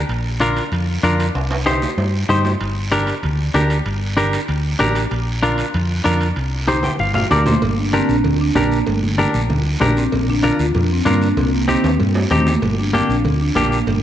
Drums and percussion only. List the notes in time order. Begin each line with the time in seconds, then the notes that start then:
0.09 high timbale, long guiro
0.41 high conga, high timbale, short guiro
0.56 high timbale, short guiro
0.72 high conga, high timbale, long guiro
1.03 high conga, high timbale, short guiro
1.20 high timbale, short guiro
1.35 high timbale, long guiro
1.51 high timbale
1.66 high conga, high timbale, short guiro
1.82 low timbale, short guiro
1.98 low timbale, long guiro
2.29 high conga, short guiro
2.45 low timbale, short guiro
2.61 high timbale, long guiro
2.92 high conga, high timbale, short guiro
3.07 high timbale, short guiro
3.23 high conga, high timbale, long guiro
3.54 high conga, high timbale, low timbale, short guiro
3.70 high timbale, short guiro
3.86 high timbale, long guiro
4.17 high conga, high timbale, short guiro
4.33 high timbale, short guiro
4.48 high timbale, long guiro
4.79 high conga, high timbale, low timbale, short guiro
4.95 high timbale, short guiro
5.11 high timbale, long guiro
5.43 high conga, high timbale, short guiro
5.58 high timbale, short guiro
5.74 high conga, high timbale, long guiro
6.05 high conga, high timbale, short guiro
6.21 high timbale, short guiro
6.36 high timbale, long guiro
6.68 high conga, high timbale, short guiro
6.83 high conga, high timbale, short guiro
6.99 high conga, long guiro
7.14 low conga, low timbale
7.31 low conga, short guiro
7.46 low conga, low timbale, short guiro
7.62 cowbell, low conga, long guiro
7.93 cowbell, high conga, short guiro
8.09 short guiro
8.24 cowbell, low conga, long guiro
8.56 cowbell, high conga, low conga, short guiro
8.72 short guiro
8.87 cowbell, long guiro
9.03 high conga
9.18 cowbell, high conga, short guiro
9.34 short guiro
9.50 cowbell, low conga, long guiro
9.81 cowbell, high conga, low conga, low timbale, short guiro
9.97 short guiro
10.12 cowbell, low conga, long guiro
10.28 high conga
10.43 cowbell, high conga, short guiro
10.59 short guiro
10.75 cowbell, low conga, long guiro
11.06 cowbell, high conga, low conga, short guiro
11.22 short guiro
11.37 cowbell, low conga, long guiro
11.68 cowbell, high conga, short guiro
11.84 high timbale, short guiro
12.00 cowbell, low conga, long guiro
12.15 low timbale
12.30 cowbell, high conga, low conga, short guiro
12.47 low timbale, short guiro
12.62 cowbell, low conga, long guiro
12.94 cowbell, high conga, short guiro
13.10 short guiro
13.24 cowbell, low conga, long guiro
13.56 cowbell, high conga, low conga, short guiro
13.72 short guiro
13.87 cowbell, low conga, long guiro